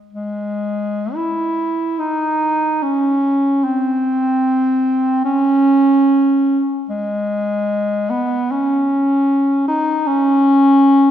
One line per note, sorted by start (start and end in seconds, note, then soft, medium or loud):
0.13 1.16 G#3 medium
1.14 2.01 E4 medium
1.99 2.84 D#4 medium
2.83 3.65 C#4 medium
3.64 5.24 C4 medium
5.25 6.62 C#4 medium
6.89 8.12 G#3 medium
8.10 8.53 B3 medium
8.51 9.67 C#4 medium
9.68 10.08 D#4 medium
10.07 11.11 C#4 medium